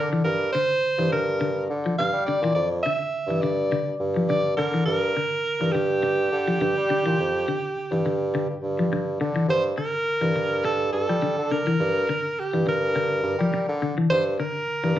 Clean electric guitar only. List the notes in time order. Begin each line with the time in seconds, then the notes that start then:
Already playing: D3
0.13 E3
0.55 D3
0.99 E3
1.13 D3
1.41 D3
1.86 F3
2.00 D3
2.28 D3
2.44 E3
2.86 D3
3.30 E3
3.43 D3
3.72 D3
4.16 F3
4.30 D3
4.59 D3
4.74 E3
5.17 D3
5.61 E3
5.75 D3
6.03 muted clean electric guitar stroke
6.48 F3
6.61 D3
6.90 D3
7.06 E3
7.48 D3
7.92 E3
8.06 D3
8.35 D3
8.79 F3
8.93 D3
9.21 D3
9.36 E3
9.78 D3
10.21 E3
10.36 D3
10.65 muted clean electric guitar stroke
11.09 F3
11.22 D3
11.51 D3
11.67 E3
12.09 D3
12.54 E3
12.67 D3
12.96 D3
13.41 F3
13.54 muted clean electric guitar stroke
13.82 D3
13.98 E3
14.40 D3
14.84 E3